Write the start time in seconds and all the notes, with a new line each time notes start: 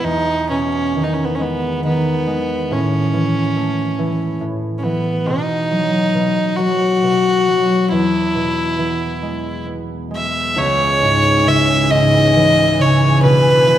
0.04 E2 D#4
0.50 B2 C#4
0.95 D#3
1.04 D#4
1.14 C#4
1.25 B3
1.35 C#4
1.40 G#3 B3
1.85 D#3 B3
2.27 G#3
2.71 A2 C#4
3.13 E3
3.57 A3
3.99 E3
4.41 A2
4.78 C#4
4.83 E3 B3
5.26 B2 D#4
5.71 F#3
6.14 B2
6.56 F#3 F#4
7.03 B2
7.48 F#3
7.89 E2 E4
8.35 B2
8.78 E3
9.22 G#3
9.67 B3
10.11 G#3
10.16 E5
10.56 C#2 E3 C#4 C#5 G#5
11.02 G#2
11.46 C#3 E5
11.91 G#2 D#5
12.36 E3
12.79 C#3 C#5
13.22 B2 D4 B4
13.66 E3